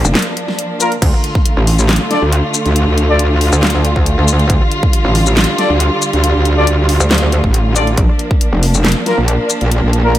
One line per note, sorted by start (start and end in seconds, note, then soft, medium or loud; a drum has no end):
0.00 0.98 F3 medium
0.00 0.98 A#3 medium
0.00 0.98 D4 medium
0.05 0.15 F1 medium
0.05 shaker medium
0.15 snare loud
0.15 clap loud
0.15 closed hi-hat medium
0.19 closed hi-hat medium
0.22 closed hi-hat medium
0.37 closed hi-hat medium
0.48 snare soft
0.59 closed hi-hat medium
0.80 0.91 A#3 medium
0.80 0.91 F4 medium
0.80 0.91 A#4 loud
0.80 closed hi-hat medium
0.80 shaker medium
0.92 closed hi-hat soft
1.02 1.12 D2 loud
1.02 7.94 D3 medium
1.02 4.46 A3 medium
1.02 7.94 F4 medium
1.02 kick loud
1.02 closed hi-hat medium
1.02 crash medium
1.24 closed hi-hat medium
1.35 kick loud
1.46 closed hi-hat medium
1.57 1.99 A1 loud
1.67 open hi-hat medium
1.79 shaker medium
1.89 snare loud
1.89 clap loud
1.89 closed hi-hat medium
1.93 closed hi-hat medium
1.96 closed hi-hat medium
2.11 2.21 D4 medium
2.11 2.21 A4 medium
2.11 2.21 D5 medium
2.11 snare soft
2.11 closed hi-hat medium
2.22 2.42 D2 loud
2.32 closed hi-hat medium
2.54 closed hi-hat medium
2.54 shaker medium
2.66 2.86 D2 loud
2.66 closed hi-hat soft
2.76 closed hi-hat medium
2.87 3.51 D2 loud
2.98 closed hi-hat medium
3.09 3.19 D4 medium
3.09 3.19 A4 medium
3.09 3.19 D5 medium
3.19 closed hi-hat medium
3.41 open hi-hat medium
3.52 4.16 D2 loud
3.52 shaker medium
3.63 snare loud
3.63 clap medium
3.63 closed hi-hat medium
3.67 closed hi-hat medium
3.70 closed hi-hat medium
3.85 closed hi-hat medium
3.96 kick medium
4.06 closed hi-hat medium
4.18 4.48 D2 loud
4.28 closed hi-hat medium
4.28 shaker medium
4.39 closed hi-hat soft
4.50 4.59 D2 loud
4.50 7.94 G3 medium
4.50 kick loud
4.50 closed hi-hat medium
4.72 closed hi-hat medium
4.83 kick loud
4.93 closed hi-hat medium
5.05 5.46 A1 loud
5.15 open hi-hat medium
5.26 shaker medium
5.37 snare loud
5.37 clap loud
5.37 closed hi-hat medium
5.41 closed hi-hat medium
5.44 closed hi-hat medium
5.58 5.69 D4 medium
5.58 5.69 A4 medium
5.58 5.69 D5 medium
5.58 snare soft
5.58 closed hi-hat medium
5.70 5.90 D2 loud
5.80 closed hi-hat medium
6.02 closed hi-hat medium
6.02 shaker medium
6.13 6.33 D2 loud
6.13 closed hi-hat soft
6.24 closed hi-hat medium
6.35 6.99 D2 loud
6.45 closed hi-hat medium
6.57 6.66 D4 medium
6.57 6.66 A4 medium
6.57 6.66 D5 loud
6.67 closed hi-hat medium
6.89 open hi-hat medium
7.00 7.42 D2 loud
7.00 shaker medium
7.11 snare loud
7.11 clap medium
7.11 closed hi-hat medium
7.14 closed hi-hat medium
7.18 closed hi-hat medium
7.32 closed hi-hat medium
7.44 7.96 A1 loud
7.44 kick medium
7.54 closed hi-hat medium
7.76 7.86 D4 medium
7.76 7.86 A4 medium
7.76 7.86 D5 loud
7.76 closed hi-hat medium
7.76 shaker medium
7.87 closed hi-hat soft
7.97 8.07 A#1 loud
7.97 10.19 F3 medium
7.97 10.19 A#3 medium
7.97 10.19 D4 medium
7.97 kick loud
7.97 closed hi-hat medium
8.19 closed hi-hat soft
8.31 kick loud
8.41 closed hi-hat medium
8.53 8.94 F1 loud
8.63 open hi-hat loud
8.74 shaker medium
8.85 snare loud
8.85 clap medium
8.85 closed hi-hat medium
8.88 closed hi-hat medium
8.92 closed hi-hat medium
9.06 9.17 A#3 medium
9.06 9.17 F4 medium
9.06 9.17 A#4 medium
9.06 snare soft
9.06 closed hi-hat medium
9.18 9.38 A#1 loud
9.28 closed hi-hat medium
9.50 closed hi-hat medium
9.50 shaker medium
9.61 9.81 A#1 loud
9.61 closed hi-hat soft
9.71 closed hi-hat medium
9.83 10.19 A#1 loud
9.93 closed hi-hat medium
10.05 10.14 A#3 medium
10.05 10.14 F4 medium
10.05 10.14 A#4 medium
10.15 closed hi-hat medium